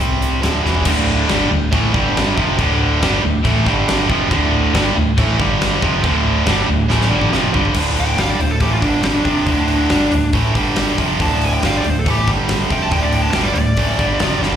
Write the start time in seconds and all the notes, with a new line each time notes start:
0.00 C2 C3 G3 C4
0.22 closed hi-hat
0.42 D1 D2 A2 D3, snare, closed hi-hat
0.64 E1 E2 B2 E3, snare
0.75 floor tom
0.85 D1 D2 A2 D3, kick, crash
1.29 G1 G2 D3 G3, snare, crash
1.50 D1 D2 A2
1.73 A1 A2 E3 A3, kick, crash
1.94 G1 G2 D3 G3, kick
2.17 snare, crash
2.37 F1 F2 C3 F3, kick
2.58 D1 D2 A2 D3, kick, crash
3.02 G1 G2 D3 G3, snare, crash
3.23 D1 D2 A2
3.43 A1 A2 E3 A3, kick, crash
3.66 G1 G2 D3 G3, kick, snare
3.88 snare, crash
4.08 F1 F2 C3 F3, kick
4.31 D1 D2 A2 D3, kick, crash
4.74 G1 G2 D3 G3, snare, crash
4.95 D1 D2 A2
5.17 A1 A2 E3 A3, kick, crash
5.39 G1 G2 D3 G3, kick
5.61 snare, crash
5.82 F1 F2 C3 F3, kick
6.04 D1 D2 A2 D3, kick, crash
6.46 G1 G2 D3 G3, snare, crash
6.68 D1 D2 A2
6.90 A1 A2 E3 A3, snare
7.01 snare
7.11 G1 G2 D3 G3
7.21 mid tom
7.32 F1 F2 C3 F3, snare
7.54 G1 G2 D3 G3, floor tom
7.65 floor tom
7.74 D1 D2 A2 D3, kick, crash
7.97 G5, open hi-hat
8.18 G1 G2 D3 G3 F5, snare, open hi-hat
8.30 D5, snare
8.40 D1 D2 A2 C5, open hi-hat
8.51 A4
8.60 A1 A2 E3 A3 G4, kick, open hi-hat
8.70 F4
8.80 G1 G2 D3 G3 D4, kick, open hi-hat
9.03 D4, snare, open hi-hat
9.25 F1 F2 C3 F3, kick, open hi-hat
9.46 D1 D2 A2 D3, kick, open hi-hat
9.68 open hi-hat
9.89 G1 G2 D3 G3, snare, open hi-hat
10.12 D1 D2 A2, open hi-hat
10.33 A1 A2 E3 A3, kick, open hi-hat
10.54 G1 G2 D3 G3, kick, open hi-hat
10.76 snare, open hi-hat
10.98 F1 F2 C3 F3, kick, open hi-hat
11.19 D1 D2 A2 D3 A5, kick, open hi-hat
11.41 G#5, open hi-hat
11.54 G5
11.62 G1 G2 D3 G3 F5, snare, open hi-hat
11.74 D5, snare
11.84 D1 D2 A2, open hi-hat
11.90 C5
11.99 A4
12.05 A1 A2 E3 A3, kick, open hi-hat
12.10 G4
12.27 G1 G2 D3 G3, kick, snare, open hi-hat
12.49 snare, open hi-hat
12.70 F1 F2 C3 F3 G5, kick, open hi-hat
12.82 A5
12.91 D1 D2 A2 D3 G5, kick, open hi-hat
13.02 D5
13.13 G5, open hi-hat
13.22 A5
13.33 G1 G2 D3 G3 G5, snare, open hi-hat
13.44 D5
13.54 D1 D2 A2 D5, open hi-hat
13.77 A1 A2 E3 A3, kick, open hi-hat
13.99 G1 G2 D3 G3, kick, open hi-hat
14.19 F1 F2 C3 F3, snare, open hi-hat
14.41 G1 G2 D3 G3, snare
14.53 floor tom